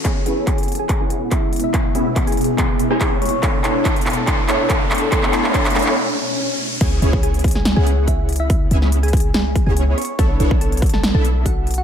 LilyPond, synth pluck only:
\new Staff \with { instrumentName = "Synth pluck" } { \time 4/4 \key cis \phrygian \tempo 4 = 142 <gis' gis''>8. r16 <gis' gis''>8. <gis' gis''>8 <gis' gis''>8. <e' e''>8. <e' e''>16~ | <e' e''>8 r8. <gis' gis''>8. <gis' gis''>8. <gis' gis''>8. <cis'' cis'''>8 | <a' a''>8. r16 <a' a''>8. <a' a''>16 <a' a''>8. r16 <a' a''>8. <a' a''>16 | <a' a''>8. r16 <a' a''>8. r2 r16 |
<gis' gis''>8. r16 <gis' gis''>8. <gis' gis''>8 <gis' gis''>8. <e' e''>8. <e' e''>16~ | <e' e''>8 r8. <gis' gis''>8. <gis' gis''>8. <gis' gis''>8. <cis'' cis'''>8 | <a' a''>8. r16 <a' a''>8. <a' a''>8 <a' a''>8. <fis' fis''>8. <fis' fis''>16 | }